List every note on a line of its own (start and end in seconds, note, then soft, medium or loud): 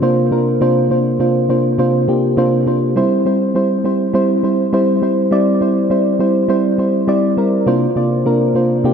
0.00 0.02 C3 loud
0.00 0.22 C3 loud
0.00 0.02 A#3 medium
0.00 0.22 A#3 medium
0.00 0.02 D4 medium
0.00 0.22 D4 medium
0.00 0.03 F4 loud
0.00 0.22 F4 medium
0.00 0.32 A#4 medium
0.00 0.03 C5 loud
0.00 0.22 C5 loud
0.31 0.51 C3 medium
0.31 0.51 A#3 medium
0.31 0.52 D4 medium
0.31 0.52 F4 medium
0.31 0.52 A#4 medium
0.61 0.81 C3 loud
0.61 0.81 A#3 medium
0.61 0.81 D4 medium
0.61 0.81 F4 medium
0.61 0.81 C5 loud
0.90 1.10 C3 medium
0.90 1.10 A#3 medium
0.90 1.10 D4 medium
0.90 1.11 F4 medium
0.90 1.11 C5 medium
1.19 1.39 C3 medium
1.19 1.39 A#3 medium
1.19 1.40 D4 medium
1.19 1.40 F4 medium
1.19 1.40 C5 medium
1.49 1.69 C3 medium
1.49 1.69 A#3 medium
1.49 1.69 D4 medium
1.49 1.69 F4 medium
1.49 1.69 C5 medium
1.78 1.98 C3 loud
1.78 1.98 A#3 medium
1.78 1.98 D4 medium
1.78 1.99 F4 medium
1.78 1.99 C5 loud
2.08 2.28 C3 medium
2.08 2.28 A#3 medium
2.08 2.28 D4 medium
2.08 2.28 F4 medium
2.08 2.28 G4 medium
2.37 2.57 C3 loud
2.37 2.57 A#3 medium
2.37 2.57 D4 loud
2.37 2.57 F4 medium
2.37 2.58 C5 loud
2.66 2.86 C3 medium
2.66 2.87 A#3 medium
2.66 2.87 D4 medium
2.66 2.87 F4 medium
2.66 2.87 C5 medium
2.96 3.16 G3 loud
2.96 3.16 C4 medium
2.96 3.16 E4 medium
2.96 3.16 C5 loud
3.25 3.45 G3 medium
3.25 3.46 C4 medium
3.25 3.46 E4 medium
3.25 3.46 C5 medium
3.55 3.75 G3 medium
3.55 3.75 C4 medium
3.55 3.75 E4 medium
3.55 3.75 C5 medium
3.84 4.04 G3 medium
3.84 4.04 C4 medium
3.84 4.05 E4 medium
3.84 4.05 C5 medium
4.13 4.34 G3 loud
4.13 4.34 C4 medium
4.13 4.34 E4 medium
4.13 4.34 C5 loud
4.43 4.63 G3 medium
4.43 4.63 C4 medium
4.43 4.63 E4 medium
4.43 4.64 C5 medium
4.73 4.92 G3 loud
4.73 4.93 C4 medium
4.73 4.93 E4 medium
4.73 4.93 C5 loud
5.02 5.22 G3 medium
5.02 5.22 C4 medium
5.02 5.22 E4 medium
5.02 5.22 C5 medium
5.31 5.51 G3 loud
5.31 5.51 C4 medium
5.31 5.52 E4 medium
5.31 5.52 D5 loud
5.61 5.81 G3 medium
5.61 5.81 C4 medium
5.61 5.81 E4 medium
5.61 5.81 C5 medium
5.90 6.10 G3 medium
5.90 6.10 C4 medium
5.90 6.10 E4 medium
5.90 6.11 C5 medium
6.19 6.39 G3 medium
6.19 6.40 C4 medium
6.19 6.40 E4 medium
6.19 6.40 C5 medium
6.48 6.69 G3 medium
6.48 6.69 C4 medium
6.48 6.69 E4 medium
6.48 6.69 C5 loud
6.78 6.98 G3 medium
6.78 6.98 C4 medium
6.78 6.99 E4 medium
6.78 6.99 C5 medium
7.07 7.28 G3 loud
7.07 7.28 C4 loud
7.07 7.28 E4 medium
7.07 7.28 D5 loud
7.37 7.57 G3 medium
7.37 7.57 C4 medium
7.37 7.57 E4 medium
7.37 7.58 A#4 medium
7.66 7.86 C3 loud
7.66 7.87 A#3 medium
7.66 7.87 D4 medium
7.66 7.87 F4 loud
7.66 7.87 C5 loud
7.96 8.16 C3 medium
7.96 8.16 A#3 medium
7.96 8.16 D4 medium
7.96 8.16 F4 medium
7.96 8.16 D5 medium
8.25 8.45 C3 medium
8.25 8.45 A#3 medium
8.25 8.46 D4 medium
8.25 8.46 F4 medium
8.25 8.46 A#4 medium
8.55 8.75 C3 medium
8.55 8.75 A#3 medium
8.55 8.75 D4 medium
8.55 8.75 F4 medium
8.55 8.75 C5 medium
8.84 8.94 C3 loud
8.84 8.94 A#3 medium
8.84 8.94 D4 medium
8.84 8.94 F4 medium
8.84 8.94 G4 loud